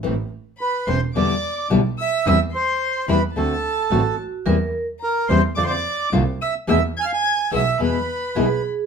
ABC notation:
X:1
M:4/4
L:1/16
Q:1/4=108
K:Am
V:1 name="Violin"
z4 b2 c'2 d'4 z2 e'2 | e'2 c'4 b2 a6 z2 | z4 _b2 c'2 d'/2 c'/2 d'3 z2 e'2 | e'2 ^g'/2 f'/2 g'3 e'2 b6 z2 |]
V:2 name="Bandoneon"
z4 B2 c2 d4 z2 e2 | e2 c4 B2 A6 z2 | z4 _B2 c2 d/2 c/2 d3 z2 e2 | e2 ^g/2 f/2 g3 e2 B6 z2 |]
V:3 name="Vibraphone"
z16 | z12 ^F4 | _B3 z12 z | z12 ^G4 |]
V:4 name="Nylon-string guitar"
[E,A,CE]2 z4 [E,A,CE]2 [B,,D,G,B,E]2 z2 [B,,D,G,B,E]2 z2 | [E,G,CE]2 z4 [E,G,CE]2 [D,A,C^F]2 z2 [D,A,CF]2 z2 | [E,G,CE]2 z4 [E,G,CE]2 [D,A,CF]2 z2 [D,A,CF]2 z2 | [B,,E,^G,B,E]2 z4 [B,,E,G,B,E]2 [B,,E,G,B,E]2 z2 [B,,E,G,B,E]2 z2 |]
V:5 name="Double bass" clef=bass
A,,,2 z4 E,,,2 E,,2 z2 B,,,2 z2 | E,,2 z4 E,,2 D,,2 z2 A,,,2 z2 | E,,2 z4 E,,2 F,,2 z2 C,,2 z2 | E,,2 z4 B,,,2 E,,2 z2 B,,,2 z2 |]